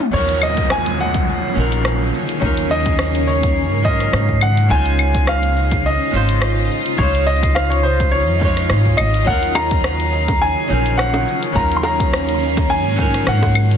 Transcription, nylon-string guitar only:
0.11 1.52 F#3 medium
0.11 1.53 C#4 medium
0.11 1.54 D#4 medium
0.16 1.54 F3 medium
0.16 1.55 A#4 medium
1.54 2.39 F3 medium
1.54 2.38 F#3 medium
1.54 2.38 C#4 medium
1.54 2.39 D#4 medium
1.59 2.40 A#4 medium
2.40 3.80 F#3 medium
2.40 3.81 C#4 medium
2.40 3.82 D#4 medium
2.40 3.82 F4 medium
2.45 3.83 A#4 medium
3.83 4.66 F#3 medium
3.83 4.67 C#4 medium
3.83 4.68 D#4 medium
3.83 4.68 F4 medium
3.88 4.69 A#4 medium
4.69 6.09 G#3 medium
4.69 6.10 C#4 medium
4.69 6.11 D#4 medium
4.73 6.11 F4 medium
4.73 6.12 C5 loud
6.11 6.95 G#3 medium
6.11 6.95 C#4 medium
6.11 6.96 D#4 medium
6.11 6.97 F4 medium
6.16 6.97 C5 medium
6.97 8.38 G#3 medium
6.97 8.38 C#4 medium
6.97 8.39 D#4 medium
7.01 8.40 F4 medium
7.01 8.40 C5 medium
8.40 9.23 G#3 medium
8.40 9.24 C#4 medium
8.40 9.25 D#4 medium
8.44 9.25 F4 medium
8.44 9.26 C#5 medium
9.24 10.66 F#3 medium
9.24 10.66 C#4 medium
9.24 10.67 D#4 medium
9.29 10.68 F4 medium
9.29 10.68 A#4 medium
10.68 11.52 F3 medium
10.68 11.51 F#3 medium
10.68 11.52 C#4 medium
10.68 11.53 D#4 medium
10.72 11.54 A#4 medium
11.52 12.94 F#3 medium
11.52 12.95 C#4 medium
11.52 12.95 D#4 medium
11.56 12.96 F4 medium
11.56 12.97 A#4 medium
12.96 13.77 F#3 medium
12.96 13.77 C#4 medium
12.96 13.77 D#4 medium
13.00 13.77 F3 medium
13.00 13.77 A#4 medium

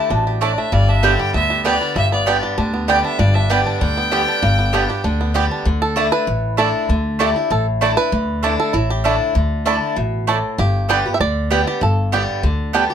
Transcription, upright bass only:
0.10 0.53 A1 medium
0.72 1.15 G1 medium
1.34 1.77 D2 medium
1.96 2.38 G1 medium
2.58 3.00 D2 medium
3.19 3.62 G1 medium
3.81 4.24 D2 medium
4.43 4.85 G1 medium
5.04 5.47 D2 medium
5.66 6.08 D2 medium
6.27 6.70 A1 medium
6.89 7.32 D2 medium
7.51 7.93 A1 medium
8.12 8.55 D2 medium
8.74 9.16 A1 medium
9.35 9.78 D2 medium
9.97 10.39 A1 medium
10.58 11.01 G1 medium
11.20 11.63 D2 medium
11.82 12.24 G1 medium
12.43 12.86 D2 medium

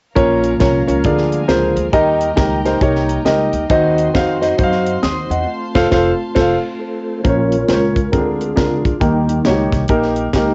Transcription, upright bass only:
0.17 0.54 A#1 medium
0.61 0.84 C2 medium
0.88 1.02 C#2 medium
1.05 1.43 D2 medium
1.49 1.72 C#2 medium
1.76 1.91 D2 medium
1.93 2.31 D#2 medium
2.37 2.75 C#2 medium
2.81 3.19 C2 medium
3.25 3.49 C#2 medium
3.53 3.67 D2 medium
3.70 4.08 D#2 medium
4.15 4.52 F2 medium
4.59 4.97 F#2 medium
5.03 5.26 D#2 medium
5.30 5.44 E2 medium
5.76 5.87 F1 medium
5.92 6.11 F1 medium
6.36 6.55 F1 medium
7.25 7.62 A#1 medium
7.70 8.07 C#2 medium
8.13 8.51 D2 medium
8.57 8.81 C#2 medium
8.85 8.99 D2 medium
9.01 9.39 D#2 medium
9.47 9.70 C#2 medium
9.73 9.87 C2 medium
9.89 10.27 A#1 medium
10.34 10.54 C#2 medium

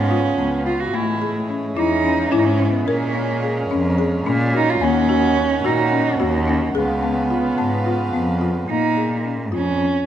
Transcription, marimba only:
0.11 0.31 F4 medium
0.38 0.58 B3 medium
0.66 0.86 F4 medium
0.94 1.14 A3 medium
1.22 1.41 G#4 medium
1.49 1.69 C#4 medium
1.77 1.97 E4 medium
2.04 2.24 C#4 medium
2.32 2.52 E4 medium
2.60 2.80 C#4 medium
2.88 3.08 A#4 medium
3.15 3.35 C#4 medium
3.43 3.63 G#4 medium
3.71 3.91 C#4 medium
3.98 4.18 G#4 medium
4.26 4.46 C#4 medium
4.54 4.74 F#4 medium
4.81 5.01 A#3 medium
5.09 5.29 F#4 medium
5.37 5.57 C#4 medium
5.65 5.84 F#4 medium
5.92 6.12 C#4 medium
6.20 6.40 F#4 medium
6.48 6.68 C#4 medium
6.75 6.95 G#4 medium
7.03 7.23 B3 medium
7.30 7.50 F4 medium
7.58 7.78 B3 medium
7.86 8.06 F4 medium
8.13 8.33 B3 medium
8.41 8.61 F4 medium
8.69 8.89 A#3 medium
8.97 9.17 G#4 medium
9.25 9.45 C#4 medium
9.52 9.72 F4 medium
9.80 10.00 C#4 medium

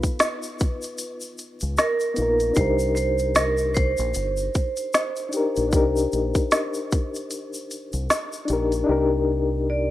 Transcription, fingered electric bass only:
1.63 1.76 C#2 medium
2.18 2.50 A#1 medium
2.57 3.94 C2 loud
3.99 4.12 A#1 medium
4.16 4.48 G1 medium
5.57 5.73 A#1 medium
5.73 6.05 C2 loud
6.13 6.32 A#1 medium
7.93 8.07 C2 medium
8.50 8.82 A#1 medium
8.89 9.91 C2 loud

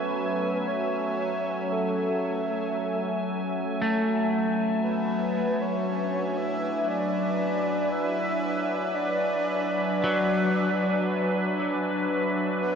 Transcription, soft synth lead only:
0.00 0.69 B4 loud
0.68 1.74 C#5 loud
1.72 3.81 A4 medium
4.82 5.63 B4 medium
5.62 6.39 C#5 loud
6.37 6.88 E5 loud
6.88 7.93 D5 loud
7.92 8.96 E5 loud
8.95 9.98 D5 loud
9.99 11.52 D5 loud
12.62 12.75 B4 medium

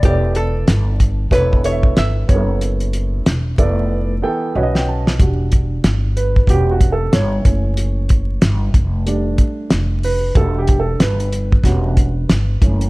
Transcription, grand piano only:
0.03 0.91 B3 medium
0.03 0.91 E4 medium
0.03 0.92 A4 medium
0.03 0.11 C#5 medium
0.10 0.95 D5 medium
1.31 1.59 B3 medium
1.31 1.59 E4 medium
1.31 1.59 A4 medium
1.31 1.59 C#5 medium
1.64 2.26 B3 medium
1.64 2.27 E4 medium
1.64 2.29 A4 medium
1.64 1.72 D#5 medium
1.71 2.33 E5 medium
2.28 3.33 B3 medium
2.28 3.33 E4 medium
2.28 2.37 G4 medium
2.28 3.34 C#5 medium
2.35 3.37 A4 medium
3.58 4.12 B3 medium
3.58 4.13 E4 medium
3.58 4.13 A4 medium
3.58 4.13 D5 medium
4.22 4.55 E3 medium
4.22 4.55 B3 medium
4.22 4.55 A4 medium
4.22 4.55 G5 medium
4.55 5.09 C#4 medium
4.55 5.10 F#4 medium
4.55 5.10 B4 medium
4.55 4.63 C#5 medium
4.55 4.61 D#5 medium
4.63 5.13 D#5 medium
4.76 4.87 G5 medium
4.88 5.18 A5 medium
5.20 6.45 G3 medium
5.20 6.45 D4 medium
5.20 6.45 F#4 medium
6.17 6.46 B4 medium
6.48 7.41 G3 medium
6.48 7.41 B3 medium
6.48 7.42 C#4 soft
6.48 6.70 F#4 medium
6.48 6.71 G4 loud
6.71 6.91 F#4 medium
6.92 7.14 A4 medium
7.14 8.71 C#5 medium
7.45 8.38 E3 medium
7.45 8.38 A3 soft
7.45 8.38 C#4 medium
9.06 10.31 G3 medium
9.06 10.32 A3 medium
9.06 10.32 D4 medium
10.04 10.34 B4 medium
10.35 11.28 G3 medium
10.35 11.29 D4 medium
10.35 11.29 F#4 medium
10.35 10.58 A4 loud
10.58 10.80 G4 medium
10.80 11.01 A4 medium
11.01 12.58 B4 medium
11.64 12.09 G3 medium
11.64 12.10 B3 medium
11.64 12.10 C#4 medium
11.64 12.10 F#4 medium
12.61 12.90 E3 soft
12.61 12.90 A3 soft
12.61 12.90 C#4 medium

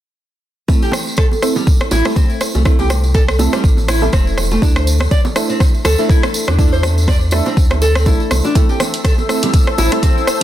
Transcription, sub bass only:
1.92 2.02 A1 loud
2.55 3.48 C2 medium
3.64 4.09 A1 loud
4.13 4.58 E1 loud
4.62 5.07 D2 medium
5.85 5.96 D2 loud
6.48 7.41 E2 medium
7.57 8.08 D2 loud
8.06 8.17 A1 medium
8.31 8.41 C2 medium
9.78 9.89 A1 medium

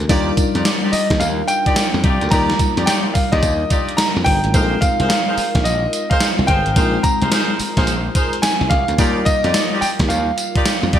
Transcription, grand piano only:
0.92 1.21 D#5 medium
1.20 1.26 F5 loud
1.48 2.34 G5 loud
2.31 2.89 A#5 loud
2.86 2.92 G5 loud
3.14 3.33 F5 medium
3.32 4.00 D#5 loud
3.97 4.26 A#5 loud
4.24 4.83 G5 loud
4.81 5.07 F5 loud
5.09 5.66 F5 loud
5.64 6.12 D#5 medium
6.10 6.49 F5 medium
6.47 7.05 G5 loud
7.03 7.55 A#5 loud
8.42 8.71 G#5 loud
8.70 9.27 F5 loud
9.25 9.83 D#5 loud
9.81 9.87 G5 loud
10.09 10.99 F5 medium

